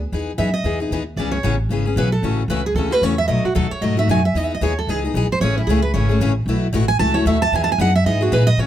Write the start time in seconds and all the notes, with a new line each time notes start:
Already playing: D2
0.12 E2 E3 B3 D#4 G#4
0.38 F#2 E3 B3 D#4 G#4 E5
0.54 D#5
0.64 E2 E3 B3 D#4 G#4
0.80 B3 D#4 G#4
0.91 D#2 E3 B3 D#4 G#4
1.16 C#2 C#3 E3 B3 C#4 G#4 D5
1.32 C#5
1.43 A1 C#3 E3 B3 C#4 G#4
1.69 G#1 C#3 E3 B3 C#4 G#4
1.85 B3 C#4 G#4
1.96 B1 C#3 E3 B3 C#4 G#4 B4
2.12 A4
2.22 A1 C#3 E3 A3 C#4 F#4
2.48 C#2 C#3 E3 A3 C#4 F#4 B4
2.66 G#4
2.74 D#2 C#3 E3 A3 C#4 F#4 A4
2.91 A3 C#4 F#4 B4
3.02 E2 C#3 E3 A3 C#4 F#4 C#5
3.18 E5
3.28 B1 B2 F#3 A3 D#4 F#4 D#5
3.44 F#4, muted upright bass stroke
3.55 D#2 B2 F#3 A3 D#4 F#4 A4
3.71 C#5, muted upright bass stroke
3.81 G#2 B2 F#3 A3 D#4 F#4 D#5
3.97 A3 D#4 F#4 E5
4.08 F#2 B2 F#3 A3 D#4 F#4 G#5
4.25 E5
4.34 E2 E3 B3 D#4 G#4 D#5
4.45 E5
4.54 D#5
4.61 D#2 E3 B3 D#4 G#4 C#5
4.79 A4
4.87 C#2 E3 B3 D#4 G#4
5.04 B3 D#4 G#4
5.14 B1 E3 B3 D#4 G#4
5.30 C5, muted upright bass stroke
5.40 A1 C#3 E3 A3 C#4 G#4 C#5
5.58 E4
5.67 C#2 C#3 E3 A3 C#4 G#4
5.82 B4
5.94 G#1 C#3 E3 A3 C#4 G#4 C#5
6.09 A3 C#4 G#4
6.20 A1 C#3 E3 A3 C#4 G#4
6.46 B1 B2 E3 A3 E4 F#4
6.73 A1 B2 E3 A3 E4 F#4
6.88 G#5
6.99 C#2 B2 E3 A3 E4 F#4 A5
7.14 A3 E4 F#4 C#5
7.25 D#2 B2 E3 A3 E4 F#4 E5
7.42 A5
7.52 E2 E3 B3 D#4 G#4 G#5
7.64 A5
7.72 G#5
7.78 F#2 E3 B3 D#4 G#4 F#5
7.95 E5
8.05 G#2 E3 B3 D#4 G#4 D#5
8.21 B3 D#4 F#4 G#4
8.32 A#2 E3 B3 D#4 G#4 B4
8.47 D#5
8.57 A2 C#3 E3 A3 C#4 F#4 C#5